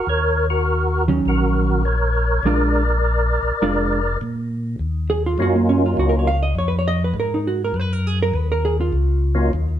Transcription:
0.07 D#2 A#4 C#5
0.50 F#4 A#4
1.08 D#3 F#3 C#4
1.25 A#1 F#4 A#4
1.85 A#4 C#5
2.43 A#1 G#3 D4 F4 A#4 D5
3.42 A#1
3.62 F1 G#3 D4 F4
4.21 A#2
4.79 D#2
5.10 G#4
5.26 F4
5.38 F#2 F#3 A#3 C#4 D#4 F4
5.42 F#4
5.56 A#3
5.69 C#4
5.86 F4
5.97 C#2 F#4
6.09 A#4
6.19 C#5
6.27 F5
6.43 D#5
6.55 F2 C#5
6.68 B4
6.79 C#5
6.88 D#5
7.04 B4
7.14 G#2
7.20 A#4
7.34 D#4
7.47 F#4
7.64 A#4
7.74 F#2
7.80 B4
7.93 A#4
8.07 G#4
8.23 A#4
8.34 D#2 B4
8.52 A#4
8.65 G#4
8.81 F4
8.93 C#2
9.35 F#3 A#3 C#4 D#4 F4
9.53 D#2

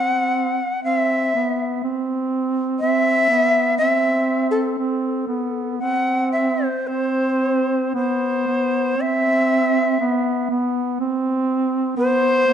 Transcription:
Already playing: C4 F#5
0.84 C4 E5
1.35 B3
1.84 C4
2.80 C4 E5
3.30 B3
3.78 C4 E5
4.51 A4
4.78 C4
5.27 B3
5.79 C4 F#5
6.32 E5
6.66 C5
6.87 C4 C5
7.95 B3 C5
8.48 B3
8.97 C4 E5
10.00 B3
10.49 B3
11.00 C4
11.97 B3 C5
12.47 B3

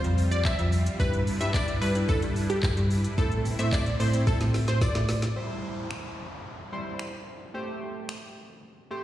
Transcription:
Already playing: G3 C4 F4 C5
0.04 F2, closed hi-hat, shaker
0.18 open hi-hat, tambourine, shaker
0.31 D5, closed hi-hat, shaker
0.45 E5, kick, clap, tambourine, shaker
0.59 F2, closed hi-hat, shaker
0.72 open hi-hat, tambourine, shaker
0.86 closed hi-hat, tambourine, shaker
1.00 G2 G3 D4 E4 B4, kick, tambourine, shaker
1.13 closed hi-hat, shaker
1.27 open hi-hat, tambourine, shaker
1.40 G2 G3 D4 E4 B4 E5, closed hi-hat, tambourine, shaker
1.54 D5, kick, clap, tambourine, shaker
1.68 closed hi-hat, shaker
1.82 G2 B4, open hi-hat, tambourine, shaker
1.95 G3 D4 E4 B4, closed hi-hat, shaker
2.09 A4, kick, tambourine, shaker
2.22 G2, closed hi-hat, tambourine, shaker
2.36 open hi-hat, tambourine, shaker
2.50 G4, closed hi-hat, shaker
2.63 kick, clap, tambourine, shaker
2.77 G2, closed hi-hat, shaker
2.91 open hi-hat, tambourine, shaker
3.04 closed hi-hat, tambourine, shaker
3.18 A2 A3 C4 E4 A4 C5, kick, tambourine, shaker
3.32 closed hi-hat, shaker
3.45 open hi-hat, tambourine, shaker
3.59 A2 A3 C4 E4 C5 E5, closed hi-hat, shaker
3.72 D5, kick, clap, tambourine, shaker
3.86 closed hi-hat, shaker
4.00 A2 C5, open hi-hat, tambourine, shaker
4.13 A3 C4 E4 C5, closed hi-hat, tambourine, shaker
4.27 A4, kick, snare, tambourine, shaker
4.41 A2, snare, closed hi-hat, tambourine, shaker
4.54 snare, open hi-hat, tambourine, shaker
4.68 C5, snare, closed hi-hat, shaker
4.81 D5, kick, snare, tambourine, shaker
4.95 A2, snare, closed hi-hat, shaker
5.09 snare, open hi-hat, tambourine, shaker
5.22 snare, closed hi-hat, shaker
5.36 G3 E4 C5, downlifter
5.91 finger snap
6.72 G3 E4 C5
6.99 finger snap
7.54 A3 G4 C5
8.09 finger snap
8.91 A3 G4 C5

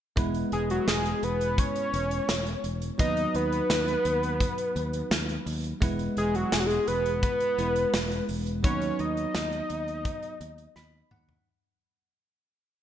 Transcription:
0.16 E1 G#3 B3 E4 B4, kick, closed hi-hat
0.34 closed hi-hat
0.52 E1 G#4, closed hi-hat
0.70 F#4, closed hi-hat
0.87 E1 G#4, snare, closed hi-hat
1.06 closed hi-hat
1.23 E1 B4, closed hi-hat
1.41 closed hi-hat
1.58 C#5, kick, closed hi-hat
1.76 closed hi-hat
1.93 E1, closed hi-hat
2.11 closed hi-hat
2.29 E1, snare, closed hi-hat
2.47 closed hi-hat
2.64 E1, closed hi-hat
2.82 closed hi-hat
2.98 D#2 F#3 B3 D#4 B4 D#5, kick, closed hi-hat
3.17 closed hi-hat
3.34 D#2 B4, closed hi-hat
3.52 closed hi-hat
3.70 D#2, snare, closed hi-hat
3.88 closed hi-hat
4.05 D#2, closed hi-hat
4.23 closed hi-hat
4.40 kick, closed hi-hat
4.58 closed hi-hat
4.76 D#2, closed hi-hat
4.93 closed hi-hat
5.11 D#2, snare, closed hi-hat
5.29 closed hi-hat
5.46 D#2, open hi-hat
5.64 closed hi-hat
5.81 E1 G#3 B3 E4 B4, kick, closed hi-hat
5.99 closed hi-hat
6.17 E1 G#4, closed hi-hat
6.35 F#4, closed hi-hat
6.52 E1 G#4, snare, closed hi-hat
6.60 F#4
6.66 G#4, closed hi-hat
6.88 E1 B4, closed hi-hat
7.06 closed hi-hat
7.23 B4, kick, closed hi-hat
7.40 closed hi-hat
7.58 E1 G#3 B3 E4 B4, closed hi-hat
7.76 closed hi-hat
7.94 E1, snare, closed hi-hat
8.11 closed hi-hat
8.29 E1, open hi-hat
8.47 closed hi-hat
8.63 D#2 F#3 B3 D#4 B4 C#5, kick, closed hi-hat
8.81 closed hi-hat
8.99 D#2 D#5, closed hi-hat
9.17 closed hi-hat
9.35 D#2, snare, closed hi-hat
9.53 closed hi-hat
9.70 D#2, closed hi-hat
9.88 closed hi-hat
10.05 kick, closed hi-hat
10.23 closed hi-hat
10.41 D#2, closed hi-hat
10.58 closed hi-hat
10.76 D#2 B5, snare
11.11 D#2 F#5, mid tom
11.29 floor tom

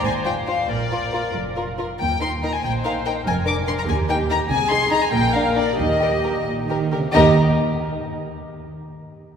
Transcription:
0.03 G#1 G#2 C5 G#5
0.25 F4 C5 G5
0.47 F4 C5 F5
0.68 A#1 A#2 A#4 D5
0.91 F4 A#4
1.13 F4 A#4
1.34 F1 F2
1.56 F4 A#4
1.79 F4 A#4
1.99 D#2 G5
2.22 D#4 A#4 C6
2.43 D#4 A#4 A#5
2.54 G#5
2.63 A#1 A#2 C5 G5
2.85 D#4 A#4 F5
3.06 D#4 A#4 G5
3.25 F1 F2 A#4 G#5
3.46 D4 A#4 D6
3.67 D4 A#4 C6
3.79 A#5
3.87 D#2 G4 G#5
4.09 D#4 A#4 G5
4.30 D#4 A#4 A#5
4.50 C2 C3 G#4 G#5
4.70 D#4 G#4 C6
4.91 D#4 G#4 A#5
5.03 G#5
5.12 A#1 A#2 A#4 G5
5.34 D4 A#4 F5
5.56 D4 A#4 D5
5.79 D#2 D#3 G4 D#5
6.01 G4 A#4
6.24 G4 A#4
6.46 A#1 A#2
6.69 D#3 G4 A#4
6.91 D3 G4 A#4
7.02 C3
7.13 D#2 D#3 A#3 D#4 G4 A#4 D#5

